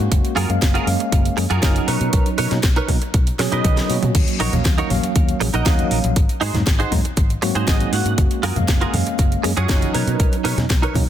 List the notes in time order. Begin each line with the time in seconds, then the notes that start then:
Already playing: G#3 A#3 C#4 F#4
0.12 F#1, kick, closed hi-hat
0.25 closed hi-hat
0.36 F#2 F4 F#4 G#4 A#4, open hi-hat
0.49 F#2 G#3 A#3 C#4 F5, closed hi-hat
0.61 F#1, muted clean electric guitar stroke, kick, snare, closed hi-hat
0.74 F4 F#4 G#4 A#4, closed hi-hat
0.87 F#2 G#3 A#3 C#4 F5, open hi-hat
1.00 muted clean electric guitar stroke, closed hi-hat
1.12 F#1, kick, closed hi-hat
1.25 closed hi-hat
1.37 F#2 G#3 A#3 C#4 G#4, muted clean electric guitar stroke, open hi-hat
1.50 F#2 F4 F#4 G#4 A#4, closed hi-hat
1.62 F#1 F#3 C#4 D#4, kick, snare, closed hi-hat
1.76 closed hi-hat
1.87 B2 D#4 A#4 B4 C#5, open hi-hat
2.01 B2, closed hi-hat
2.13 B1, kick, closed hi-hat
2.26 closed hi-hat
2.38 B2 D#4 A#4 B4 C#5, open hi-hat
2.51 B2 F#3 A#3 C#4 D#4, snare, closed hi-hat
2.63 B1, muted clean electric guitar stroke, kick, snare, closed hi-hat
2.76 D#4 A#4 B4 C#5, closed hi-hat
2.88 B2 F#3 A#3 C#4 D#4, kick, open hi-hat
3.02 muted clean electric guitar stroke, closed hi-hat
3.14 B1, kick, closed hi-hat
3.27 closed hi-hat
3.39 B2 F#3 C#4 G#4, muted clean electric guitar stroke, snare, open hi-hat
3.52 B2 D#4 A#4 B4 D#5, closed hi-hat
3.65 B1, kick, closed hi-hat, mid tom
3.77 snare, closed hi-hat
3.89 B2 F#3 A#3 C#4 F#4, open hi-hat
4.03 B2, closed hi-hat, mid tom
4.15 D#2, kick, closed hi-hat, crash, cabasa
4.27 closed hi-hat, cabasa
4.40 A#1 D#4 F#4 A#4 C#5, open hi-hat
4.53 A#1 F#3 A#3 C#4 F5, closed hi-hat, high conga, low conga, cabasa
4.65 D#2, muted clean electric guitar stroke, kick, snare, closed hi-hat, cabasa
4.78 D#4 F#4 A#4 C#5, closed hi-hat, cabasa
4.90 A#1 F#3 A#3 C#4 F5, open hi-hat, high conga, low conga
5.03 muted clean electric guitar stroke, closed hi-hat, cabasa
5.15 D#2, kick, closed hi-hat, cabasa
5.28 closed hi-hat, cabasa
5.40 A#1 F#3 A#3 C#4 G#4, muted clean electric guitar stroke, open hi-hat
5.54 A#1 D#4 F#4 A#4 D#5, closed hi-hat, cabasa
5.65 D#2 F#3 A#3 C#4 F5, kick, snare, closed hi-hat, cabasa
5.78 closed hi-hat, high conga, cabasa
5.91 A#1, open hi-hat
6.04 A#1, closed hi-hat, cabasa
6.16 G#1, kick, closed hi-hat, cabasa
6.29 closed hi-hat, cabasa
6.41 G#2 D#4 F#4 G#4 C5, open hi-hat
6.54 G#2 F#3 A#3 C4 D#4, snare, closed hi-hat, high conga, low conga, cabasa
6.66 G#1, muted clean electric guitar stroke, kick, snare, closed hi-hat, cabasa
6.79 D#4 F#4 G#4 C5, closed hi-hat, cabasa
6.91 G#2 F#3 A#3 C4 D#4, kick, open hi-hat, high conga, low conga
7.04 muted clean electric guitar stroke, closed hi-hat, cabasa
7.17 G#1, kick, closed hi-hat, cabasa
7.30 closed hi-hat, cabasa
7.42 G#2 F#3 A#3 C4 F#4, muted clean electric guitar stroke, open hi-hat
7.55 G#2 D#4 F#4 G#4 C5, closed hi-hat, cabasa
7.67 G#1 D#5, kick, snare, closed hi-hat, cabasa
7.80 closed hi-hat, cabasa
7.92 G#2 G#3 A#3 C#4 F#4 F#5, open hi-hat
8.05 G#2, closed hi-hat, cabasa
8.18 F#1, kick, closed hi-hat, cabasa
8.30 closed hi-hat, cabasa
8.43 F#2 F4 F#4 G#4 A#4, open hi-hat
8.56 F#2 G#3 A#3 C#4 F5, closed hi-hat, high conga, low conga, cabasa
8.68 F#1, muted clean electric guitar stroke, kick, snare, closed hi-hat, cabasa
8.81 F4 F#4 G#4 A#4, closed hi-hat, cabasa
8.93 F#2 G#3 A#3 C#4 F5, open hi-hat, high conga, low conga
9.06 muted clean electric guitar stroke, closed hi-hat, cabasa
9.18 F#1, kick, closed hi-hat, cabasa
9.32 closed hi-hat, cabasa
9.43 F#2 G#3 A#3 C#4 G#4, muted clean electric guitar stroke, open hi-hat
9.57 F#2 F4 F#4 G#4 C#5, closed hi-hat, cabasa
9.68 F#1 F#3 C#4 D#4, kick, snare, closed hi-hat, cabasa
9.81 closed hi-hat, high conga, cabasa
9.94 B2 D#4 A#4 B4 C#5, open hi-hat
10.07 B2, closed hi-hat, cabasa
10.19 B1, kick, closed hi-hat, cabasa
10.32 closed hi-hat, cabasa
10.44 B2 D#4 A#4 B4 C#5, open hi-hat
10.58 B2 F#3 A#3 C#4 D#4, snare, closed hi-hat, high conga, low conga, cabasa
10.70 B1, muted clean electric guitar stroke, kick, snare, closed hi-hat, cabasa
10.82 D#4 A#4 B4 C#5, closed hi-hat, cabasa
10.94 B2 F#3 A#3 C#4 D#4, kick, open hi-hat, high conga, low conga